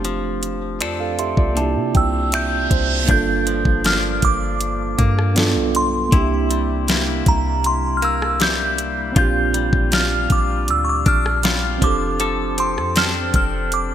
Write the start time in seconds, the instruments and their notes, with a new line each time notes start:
Already playing: 808-style bass F1, tine electric piano A3 C4 D4 G4
0.05 clean electric guitar F3, closed hi-hat
0.43 closed hi-hat
0.81 808-style bass F2, clean electric guitar C4 D4 A4, tine electric piano F4 D5, finger snap, closed hi-hat
1.00 tine electric piano A4 F5
1.19 tine electric piano G4 E5 C6, closed hi-hat
1.37 808-style bass C2, tine electric piano F4 D5, kick
1.53 clean electric guitar C3, tine electric piano A#3 D4, closed hi-hat, reverse cymbal
1.57 tine electric piano E4 A5
1.61 tine electric piano G4
1.76 808-style bass C3
1.95 808-style bass C2, tine electric piano G5, synth bell E6, kick, closed hi-hat
2.32 tine electric piano E5, synth bell G6, finger snap, closed hi-hat
2.71 808-style bass C2, tine electric piano C5, kick, closed hi-hat
3.05 808-style bass G1, tine electric piano A#3 D4, kick, closed hi-hat
3.09 clean electric guitar G2 D4, tine electric piano F4, synth bell G6
3.13 tine electric piano A4
3.47 clean electric guitar F3, closed hi-hat
3.65 808-style bass G1, kick
3.84 clean electric guitar F3 A#3 D4, synth bell F6, snare, closed hi-hat
4.22 808-style bass G1, synth bell D6, kick, closed hi-hat
4.61 closed hi-hat
4.98 808-style bass G2, clean electric guitar A#3, kick, closed hi-hat
5.19 cross-stick
5.35 clean electric guitar G2, tine electric piano B3 D4 F4, snare, closed hi-hat
5.39 tine electric piano A4
5.55 808-style bass B1
5.75 synth bell C6, closed hi-hat
6.09 808-style bass C2, clean electric guitar C3, tine electric piano A#3 D4, kick, closed hi-hat
6.13 clean electric guitar E4, tine electric piano E4
6.17 tine electric piano G4
6.50 clean electric guitar G3, closed hi-hat
6.88 clean electric guitar G3 A#3 E4, snare, closed hi-hat
7.26 808-style bass C2, synth bell A#5, kick, closed hi-hat
7.64 synth bell C6, closed hi-hat
7.97 synth bell F6
8.02 clean electric guitar A#3, synth bell E6, closed hi-hat
8.22 cross-stick
8.40 clean electric guitar G3 A#3 E4, synth bell G6, snare, closed hi-hat
8.78 closed hi-hat
9.12 808-style bass A#1, clean electric guitar A#2, tine electric piano C4 D4, kick, closed hi-hat
9.17 clean electric guitar F4, tine electric piano F4, synth bell G6
9.21 tine electric piano G4
9.54 clean electric guitar G3, closed hi-hat
9.73 808-style bass A#1, kick
9.92 clean electric guitar G3 D4 F4, synth bell F6, snare, closed hi-hat
10.30 808-style bass A#1, synth bell D6, kick, closed hi-hat
10.68 808-style bass D2, synth bell E6, closed hi-hat
10.85 synth bell C#6
10.89 synth bell D6
11.06 808-style bass A#1, clean electric guitar D4, synth bell F6, kick, closed hi-hat
11.26 cross-stick
11.43 clean electric guitar G3 D4 F4, snare, closed hi-hat
11.78 808-style bass F1, clean electric guitar F3, tine electric piano C4 D4, kick, closed hi-hat
11.84 tine electric piano G4 A4, synth bell D6
12.20 clean electric guitar F3 A4, closed hi-hat
12.58 clean electric guitar C4, synth bell C6, closed hi-hat
12.77 808-style bass F2, cross-stick
12.96 clean electric guitar C4 D4 A4, synth bell F6, snare, closed hi-hat
13.34 808-style bass F1, synth bell F6, kick, closed hi-hat
13.72 synth bell D6, closed hi-hat